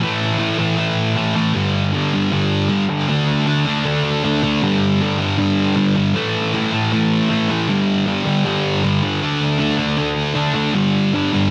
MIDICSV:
0, 0, Header, 1, 2, 480
1, 0, Start_track
1, 0, Tempo, 383142
1, 24, Time_signature, 4, 2, 24, 8
1, 14412, End_track
2, 0, Start_track
2, 0, Title_t, "Distorted electric guitar"
2, 0, Program_c, 0, 30
2, 31, Note_on_c, 0, 45, 102
2, 36, Note_on_c, 0, 52, 107
2, 41, Note_on_c, 0, 57, 117
2, 474, Note_off_c, 0, 45, 0
2, 477, Note_off_c, 0, 52, 0
2, 484, Note_off_c, 0, 57, 0
2, 489, Note_on_c, 0, 45, 83
2, 492, Note_on_c, 0, 52, 84
2, 499, Note_on_c, 0, 57, 106
2, 719, Note_off_c, 0, 45, 0
2, 729, Note_off_c, 0, 52, 0
2, 734, Note_off_c, 0, 57, 0
2, 734, Note_on_c, 0, 45, 92
2, 744, Note_on_c, 0, 52, 102
2, 749, Note_on_c, 0, 57, 101
2, 950, Note_off_c, 0, 45, 0
2, 959, Note_off_c, 0, 52, 0
2, 965, Note_off_c, 0, 57, 0
2, 965, Note_on_c, 0, 45, 109
2, 974, Note_on_c, 0, 52, 118
2, 980, Note_on_c, 0, 57, 118
2, 1442, Note_off_c, 0, 45, 0
2, 1454, Note_off_c, 0, 52, 0
2, 1457, Note_off_c, 0, 57, 0
2, 1457, Note_on_c, 0, 45, 95
2, 1469, Note_on_c, 0, 52, 96
2, 1472, Note_on_c, 0, 57, 101
2, 1678, Note_off_c, 0, 45, 0
2, 1691, Note_off_c, 0, 52, 0
2, 1693, Note_on_c, 0, 45, 85
2, 1694, Note_off_c, 0, 57, 0
2, 1706, Note_on_c, 0, 52, 99
2, 1709, Note_on_c, 0, 57, 102
2, 1924, Note_off_c, 0, 45, 0
2, 1931, Note_off_c, 0, 52, 0
2, 1932, Note_on_c, 0, 43, 100
2, 1933, Note_off_c, 0, 57, 0
2, 1933, Note_on_c, 0, 50, 101
2, 1951, Note_on_c, 0, 55, 105
2, 2399, Note_off_c, 0, 43, 0
2, 2414, Note_on_c, 0, 43, 87
2, 2415, Note_off_c, 0, 50, 0
2, 2422, Note_off_c, 0, 55, 0
2, 2430, Note_on_c, 0, 50, 92
2, 2437, Note_on_c, 0, 55, 96
2, 2659, Note_off_c, 0, 43, 0
2, 2669, Note_off_c, 0, 50, 0
2, 2674, Note_on_c, 0, 43, 87
2, 2678, Note_off_c, 0, 55, 0
2, 2684, Note_on_c, 0, 50, 94
2, 2693, Note_on_c, 0, 55, 102
2, 2890, Note_off_c, 0, 43, 0
2, 2897, Note_off_c, 0, 50, 0
2, 2905, Note_on_c, 0, 43, 109
2, 2907, Note_off_c, 0, 55, 0
2, 2912, Note_on_c, 0, 50, 108
2, 2922, Note_on_c, 0, 55, 126
2, 3359, Note_off_c, 0, 43, 0
2, 3370, Note_off_c, 0, 50, 0
2, 3374, Note_on_c, 0, 43, 97
2, 3378, Note_off_c, 0, 55, 0
2, 3385, Note_on_c, 0, 50, 104
2, 3393, Note_on_c, 0, 55, 117
2, 3606, Note_off_c, 0, 43, 0
2, 3612, Note_off_c, 0, 50, 0
2, 3620, Note_off_c, 0, 55, 0
2, 3621, Note_on_c, 0, 43, 94
2, 3627, Note_on_c, 0, 50, 93
2, 3635, Note_on_c, 0, 55, 89
2, 3848, Note_off_c, 0, 43, 0
2, 3852, Note_off_c, 0, 50, 0
2, 3855, Note_off_c, 0, 55, 0
2, 3869, Note_on_c, 0, 50, 107
2, 3883, Note_on_c, 0, 57, 112
2, 3893, Note_on_c, 0, 62, 112
2, 4330, Note_off_c, 0, 50, 0
2, 4340, Note_off_c, 0, 57, 0
2, 4345, Note_on_c, 0, 50, 88
2, 4354, Note_off_c, 0, 62, 0
2, 4355, Note_on_c, 0, 57, 90
2, 4359, Note_on_c, 0, 62, 96
2, 4572, Note_off_c, 0, 50, 0
2, 4579, Note_off_c, 0, 57, 0
2, 4587, Note_on_c, 0, 50, 92
2, 4594, Note_on_c, 0, 57, 99
2, 4600, Note_off_c, 0, 62, 0
2, 4605, Note_on_c, 0, 62, 114
2, 4804, Note_off_c, 0, 50, 0
2, 4813, Note_off_c, 0, 57, 0
2, 4819, Note_on_c, 0, 50, 112
2, 4824, Note_off_c, 0, 62, 0
2, 4828, Note_on_c, 0, 57, 113
2, 4839, Note_on_c, 0, 62, 127
2, 5292, Note_off_c, 0, 50, 0
2, 5301, Note_off_c, 0, 57, 0
2, 5306, Note_off_c, 0, 62, 0
2, 5307, Note_on_c, 0, 50, 93
2, 5316, Note_on_c, 0, 57, 96
2, 5321, Note_on_c, 0, 62, 104
2, 5531, Note_off_c, 0, 50, 0
2, 5539, Note_off_c, 0, 57, 0
2, 5543, Note_off_c, 0, 62, 0
2, 5546, Note_on_c, 0, 50, 82
2, 5554, Note_on_c, 0, 57, 102
2, 5558, Note_on_c, 0, 62, 98
2, 5771, Note_off_c, 0, 50, 0
2, 5775, Note_off_c, 0, 57, 0
2, 5777, Note_off_c, 0, 62, 0
2, 5794, Note_on_c, 0, 43, 100
2, 5799, Note_on_c, 0, 50, 106
2, 5807, Note_on_c, 0, 55, 113
2, 6265, Note_off_c, 0, 43, 0
2, 6272, Note_off_c, 0, 50, 0
2, 6276, Note_off_c, 0, 55, 0
2, 6280, Note_on_c, 0, 43, 90
2, 6287, Note_on_c, 0, 50, 92
2, 6291, Note_on_c, 0, 55, 96
2, 6484, Note_off_c, 0, 43, 0
2, 6492, Note_off_c, 0, 50, 0
2, 6499, Note_on_c, 0, 43, 93
2, 6500, Note_off_c, 0, 55, 0
2, 6507, Note_on_c, 0, 50, 93
2, 6515, Note_on_c, 0, 55, 89
2, 6720, Note_off_c, 0, 43, 0
2, 6728, Note_off_c, 0, 50, 0
2, 6734, Note_off_c, 0, 55, 0
2, 6735, Note_on_c, 0, 43, 92
2, 6743, Note_on_c, 0, 50, 104
2, 6749, Note_on_c, 0, 55, 111
2, 7200, Note_off_c, 0, 43, 0
2, 7208, Note_off_c, 0, 50, 0
2, 7213, Note_off_c, 0, 55, 0
2, 7215, Note_on_c, 0, 43, 89
2, 7223, Note_on_c, 0, 50, 91
2, 7229, Note_on_c, 0, 55, 101
2, 7442, Note_off_c, 0, 43, 0
2, 7453, Note_off_c, 0, 50, 0
2, 7457, Note_on_c, 0, 43, 90
2, 7462, Note_off_c, 0, 55, 0
2, 7468, Note_on_c, 0, 50, 89
2, 7477, Note_on_c, 0, 55, 102
2, 7686, Note_off_c, 0, 43, 0
2, 7691, Note_off_c, 0, 50, 0
2, 7695, Note_off_c, 0, 55, 0
2, 7696, Note_on_c, 0, 45, 94
2, 7705, Note_on_c, 0, 52, 93
2, 7710, Note_on_c, 0, 57, 114
2, 8170, Note_off_c, 0, 45, 0
2, 8178, Note_off_c, 0, 52, 0
2, 8185, Note_on_c, 0, 45, 88
2, 8187, Note_off_c, 0, 57, 0
2, 8193, Note_on_c, 0, 52, 87
2, 8202, Note_on_c, 0, 57, 94
2, 8409, Note_off_c, 0, 45, 0
2, 8417, Note_off_c, 0, 52, 0
2, 8423, Note_off_c, 0, 57, 0
2, 8424, Note_on_c, 0, 45, 89
2, 8432, Note_on_c, 0, 52, 91
2, 8438, Note_on_c, 0, 57, 105
2, 8657, Note_off_c, 0, 45, 0
2, 8660, Note_off_c, 0, 52, 0
2, 8668, Note_off_c, 0, 57, 0
2, 8672, Note_on_c, 0, 45, 104
2, 8675, Note_on_c, 0, 52, 110
2, 8684, Note_on_c, 0, 57, 119
2, 9127, Note_off_c, 0, 45, 0
2, 9138, Note_off_c, 0, 52, 0
2, 9142, Note_on_c, 0, 45, 91
2, 9145, Note_off_c, 0, 57, 0
2, 9153, Note_on_c, 0, 52, 97
2, 9160, Note_on_c, 0, 57, 107
2, 9372, Note_off_c, 0, 45, 0
2, 9382, Note_off_c, 0, 52, 0
2, 9387, Note_on_c, 0, 45, 91
2, 9395, Note_off_c, 0, 57, 0
2, 9397, Note_on_c, 0, 52, 99
2, 9410, Note_on_c, 0, 57, 93
2, 9610, Note_off_c, 0, 45, 0
2, 9615, Note_off_c, 0, 52, 0
2, 9622, Note_off_c, 0, 57, 0
2, 9630, Note_on_c, 0, 43, 99
2, 9636, Note_on_c, 0, 50, 113
2, 9643, Note_on_c, 0, 55, 111
2, 10084, Note_off_c, 0, 43, 0
2, 10096, Note_off_c, 0, 50, 0
2, 10099, Note_on_c, 0, 43, 92
2, 10100, Note_off_c, 0, 55, 0
2, 10111, Note_on_c, 0, 50, 97
2, 10115, Note_on_c, 0, 55, 94
2, 10320, Note_off_c, 0, 43, 0
2, 10333, Note_off_c, 0, 50, 0
2, 10334, Note_off_c, 0, 55, 0
2, 10335, Note_on_c, 0, 43, 95
2, 10348, Note_on_c, 0, 50, 105
2, 10349, Note_on_c, 0, 55, 105
2, 10566, Note_off_c, 0, 43, 0
2, 10577, Note_off_c, 0, 50, 0
2, 10582, Note_off_c, 0, 55, 0
2, 10582, Note_on_c, 0, 43, 100
2, 10592, Note_on_c, 0, 50, 118
2, 10597, Note_on_c, 0, 55, 111
2, 11057, Note_off_c, 0, 43, 0
2, 11063, Note_off_c, 0, 50, 0
2, 11067, Note_off_c, 0, 55, 0
2, 11072, Note_on_c, 0, 43, 94
2, 11078, Note_on_c, 0, 50, 95
2, 11083, Note_on_c, 0, 55, 100
2, 11297, Note_off_c, 0, 43, 0
2, 11305, Note_off_c, 0, 50, 0
2, 11310, Note_off_c, 0, 55, 0
2, 11312, Note_on_c, 0, 43, 85
2, 11320, Note_on_c, 0, 50, 96
2, 11325, Note_on_c, 0, 55, 97
2, 11532, Note_off_c, 0, 43, 0
2, 11536, Note_off_c, 0, 50, 0
2, 11539, Note_off_c, 0, 55, 0
2, 11550, Note_on_c, 0, 50, 99
2, 11554, Note_on_c, 0, 57, 105
2, 11564, Note_on_c, 0, 62, 115
2, 11994, Note_off_c, 0, 50, 0
2, 12008, Note_off_c, 0, 57, 0
2, 12009, Note_on_c, 0, 50, 90
2, 12022, Note_off_c, 0, 62, 0
2, 12023, Note_on_c, 0, 57, 106
2, 12027, Note_on_c, 0, 62, 107
2, 12239, Note_off_c, 0, 50, 0
2, 12242, Note_off_c, 0, 57, 0
2, 12254, Note_on_c, 0, 50, 94
2, 12257, Note_on_c, 0, 57, 104
2, 12261, Note_off_c, 0, 62, 0
2, 12266, Note_on_c, 0, 62, 108
2, 12480, Note_off_c, 0, 50, 0
2, 12482, Note_off_c, 0, 57, 0
2, 12494, Note_off_c, 0, 62, 0
2, 12495, Note_on_c, 0, 50, 107
2, 12497, Note_on_c, 0, 57, 106
2, 12509, Note_on_c, 0, 62, 117
2, 12951, Note_off_c, 0, 50, 0
2, 12958, Note_off_c, 0, 57, 0
2, 12962, Note_off_c, 0, 62, 0
2, 12966, Note_on_c, 0, 50, 93
2, 12973, Note_on_c, 0, 57, 99
2, 12977, Note_on_c, 0, 62, 96
2, 13195, Note_off_c, 0, 50, 0
2, 13207, Note_off_c, 0, 57, 0
2, 13210, Note_on_c, 0, 50, 88
2, 13215, Note_off_c, 0, 62, 0
2, 13222, Note_on_c, 0, 57, 94
2, 13230, Note_on_c, 0, 62, 106
2, 13443, Note_off_c, 0, 50, 0
2, 13449, Note_off_c, 0, 57, 0
2, 13453, Note_off_c, 0, 62, 0
2, 13457, Note_on_c, 0, 43, 97
2, 13466, Note_on_c, 0, 50, 109
2, 13475, Note_on_c, 0, 55, 106
2, 13936, Note_off_c, 0, 43, 0
2, 13940, Note_off_c, 0, 50, 0
2, 13945, Note_off_c, 0, 55, 0
2, 13951, Note_on_c, 0, 43, 94
2, 13955, Note_on_c, 0, 50, 99
2, 13960, Note_on_c, 0, 55, 97
2, 14177, Note_off_c, 0, 43, 0
2, 14191, Note_off_c, 0, 50, 0
2, 14192, Note_on_c, 0, 43, 88
2, 14195, Note_off_c, 0, 55, 0
2, 14206, Note_on_c, 0, 50, 97
2, 14210, Note_on_c, 0, 55, 104
2, 14412, Note_off_c, 0, 43, 0
2, 14412, Note_off_c, 0, 50, 0
2, 14412, Note_off_c, 0, 55, 0
2, 14412, End_track
0, 0, End_of_file